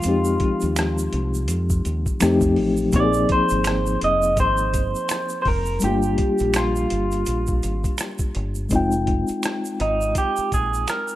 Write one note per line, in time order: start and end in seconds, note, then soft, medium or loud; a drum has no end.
0.00 2.16 F3 medium
0.00 2.16 G#3 medium
0.00 2.54 F4 medium
0.00 closed hi-hat medium
0.00 shaker medium
0.05 0.37 F2 loud
0.05 2.17 C4 medium
0.05 2.18 D#4 soft
0.05 2.19 G4 medium
0.25 shaker soft
0.40 kick medium
0.40 closed hi-hat medium
0.61 1.07 D#2 medium
0.61 closed hi-hat soft
0.61 shaker soft
0.76 finger snap medium
0.76 cross-stick loud
0.76 closed hi-hat medium
0.76 shaker medium
0.98 shaker soft
1.13 1.50 C2 medium
1.13 closed hi-hat medium
1.34 shaker soft
1.48 1.81 F2 medium
1.48 closed hi-hat medium
1.48 shaker medium
1.70 kick medium
1.70 shaker soft
1.85 2.04 D#2 medium
1.85 closed hi-hat medium
1.85 shaker soft
2.06 kick medium
2.06 shaker soft
2.20 2.58 F2 medium
2.20 2.90 F3 medium
2.20 2.93 A3 medium
2.20 2.94 C4 medium
2.20 2.94 D#4 medium
2.20 2.94 G4 medium
2.20 finger snap medium
2.20 cross-stick medium
2.20 closed hi-hat medium
2.20 shaker medium
2.41 kick medium
2.41 shaker soft
2.56 2.89 A1 medium
2.56 open hi-hat soft
2.77 shaker soft
2.91 3.25 A#1 loud
2.91 5.77 F3 medium
2.91 5.78 A#3 medium
2.91 5.79 C4 medium
2.91 kick medium
2.91 closed hi-hat medium
2.91 shaker medium
2.96 5.80 D#4 medium
2.96 3.03 G4 medium
2.96 3.31 D5 loud
3.04 5.84 G#4 medium
3.13 shaker soft
3.29 3.99 C5 loud
3.29 kick medium
3.29 closed hi-hat medium
3.49 3.96 G#1 medium
3.49 closed hi-hat soft
3.49 shaker soft
3.64 finger snap medium
3.64 cross-stick loud
3.64 closed hi-hat medium
3.64 shaker medium
3.86 shaker soft
4.01 4.38 F1 medium
4.01 4.40 D#5 medium
4.01 closed hi-hat medium
4.22 shaker soft
4.37 4.75 G#1 medium
4.37 5.41 C5 loud
4.37 kick medium
4.37 closed hi-hat medium
4.37 shaker medium
4.57 shaker soft
4.74 4.93 G1 medium
4.74 kick medium
4.74 closed hi-hat medium
4.74 shaker soft
4.95 shaker soft
5.09 finger snap medium
5.09 cross-stick loud
5.09 closed hi-hat medium
5.09 shaker medium
5.29 shaker soft
5.42 5.47 C5 medium
5.42 kick medium
5.42 open hi-hat soft
5.47 5.78 F1 medium
5.47 5.84 A#4 medium
5.66 shaker soft
5.80 6.15 G1 loud
5.80 8.66 G3 medium
5.80 5.90 A3 soft
5.80 8.68 D4 medium
5.80 closed hi-hat medium
5.80 shaker medium
5.84 8.70 A#3 medium
5.84 8.69 F4 medium
5.84 6.56 G4 medium
5.84 8.69 G4 medium
6.02 shaker soft
6.18 kick medium
6.18 closed hi-hat medium
6.38 6.85 A#1 medium
6.38 closed hi-hat soft
6.38 shaker soft
6.54 7.96 F4 medium
6.54 finger snap medium
6.54 cross-stick loud
6.54 closed hi-hat medium
6.54 shaker medium
6.76 shaker soft
6.90 7.23 G1 medium
6.90 closed hi-hat medium
7.11 closed hi-hat soft
7.11 shaker soft
7.26 7.59 A#1 medium
7.26 closed hi-hat medium
7.26 shaker medium
7.47 kick medium
7.47 shaker soft
7.63 7.83 G#1 medium
7.63 closed hi-hat medium
7.63 shaker soft
7.84 kick medium
7.84 closed hi-hat soft
7.84 shaker soft
7.98 finger snap medium
7.98 cross-stick loud
7.98 closed hi-hat medium
7.98 shaker medium
8.19 kick medium
8.19 shaker soft
8.35 8.68 G1 medium
8.35 closed hi-hat medium
8.55 shaker soft
8.69 9.23 F1 loud
8.69 11.15 G#3 medium
8.69 11.15 C4 medium
8.69 11.15 D#4 medium
8.69 kick medium
8.69 closed hi-hat medium
8.69 shaker medium
8.74 11.15 F4 medium
8.74 11.15 G5 medium
8.92 shaker soft
9.07 kick medium
9.07 closed hi-hat medium
9.28 muted fingered electric bass stroke soft
9.28 closed hi-hat soft
9.28 shaker soft
9.43 finger snap medium
9.43 cross-stick loud
9.43 closed hi-hat medium
9.43 shaker medium
9.65 shaker soft
9.80 10.12 G#1 medium
9.80 10.14 D#4 medium
9.80 closed hi-hat medium
10.01 shaker soft
10.15 10.54 G4 medium
10.15 kick medium
10.15 closed hi-hat medium
10.15 shaker medium
10.37 muted fingered electric bass stroke soft
10.37 shaker soft
10.52 10.84 A#1 medium
10.52 10.89 G#4 medium
10.52 kick medium
10.52 closed hi-hat medium
10.52 shaker soft
10.74 shaker soft
10.88 11.15 A#4 medium
10.88 finger snap medium
10.88 cross-stick medium
10.88 closed hi-hat medium
10.88 shaker medium
11.08 shaker soft